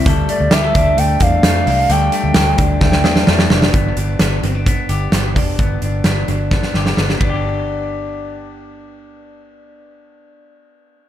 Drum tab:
RD |----------------|----------------|----------------|--------------x-|
HH |x-x-x-x-x-x-x-o-|x-x-x-x---------|x-x-x-x-x-x-x-o-|x-x-x-x---------|
SD |----o-------o---|----o---oooooooo|----o-------o---|----o---oooooo--|
BD |o-----o---o-----|------o-o-------|o-------o-----o-|o-------o-----o-|

RD |----------------|----------------|
HH |----------------|----------------|
SD |----------------|----------------|
BD |----------------|----------------|